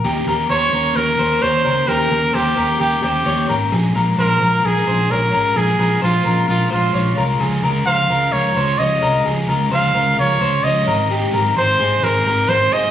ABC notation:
X:1
M:4/4
L:1/8
Q:1/4=130
K:Ebmix
V:1 name="Clean electric guitar"
G B c B2 c d B | G B c B2 c d B | A B c B2 c d B | A B c B2 c d B |
A B c B2 c d B | A B c B2 c d B | G B c A2 B c A |]
V:2 name="Trumpet"
z2 d2 B2 c2 | B2 G2 G G2 z | z2 B2 A2 B2 | A2 F2 F F2 z |
z2 f2 d2 e2 | z2 f2 d2 e2 | z2 c2 B2 c e |]
V:3 name="Overdriven electric guitar"
[E,B,DG] [B,DG] [E,B,DG] [B,DG] [E,B,DG] [B,DG] [E,B,DG] [B,DG] | [E,B,DG] [B,DG] [E,B,DG] [B,DG] [E,B,DG] [B,DG] [E,B,DG] [B,DG] | [B,,F,A,DF] [A,DF] [F,A,DF] [A,DF] [B,,F,A,DF] [A,DF] [F,A,DF] [A,DF] | [B,,F,A,DF] [A,DF] [F,A,DF] [A,DF] [B,,F,A,DF] [A,DF] [F,A,DF] [A,DF] |
[D,F,A,DF] [A,DF] [F,A,DF] [A,DF] [D,F,A,DF] [A,DF] [F,A,DF] [A,DF] | [D,F,A,DF] [A,DF] [F,A,DF] [A,DF] [D,F,A,DF] [A,DF] [F,A,DF] [CEG] | [A,CEG] [CEG] [A,CEG] [CEG] [A,CEG] [CEG] [A,CEG] [CEG] |]
V:4 name="Fingered electric bass" clef=bass
E,, E,, E,, E,, E,, E,, E,, D,, | E,, E,, E,, E,, E,, E,, E,, A,,, | B,,, B,,, B,,, B,,, B,,, B,,, B,,, A,,, | B,,, B,,, B,,, B,,, B,,, B,,, B,,, C,, |
D,, D,, D,, D,, D,, D,, D,, C,, | D,, D,, D,, D,, D,, D,, D,, A,,,- | A,,, A,,, A,,, A,,, A,,, A,,, A,,, G,,, |]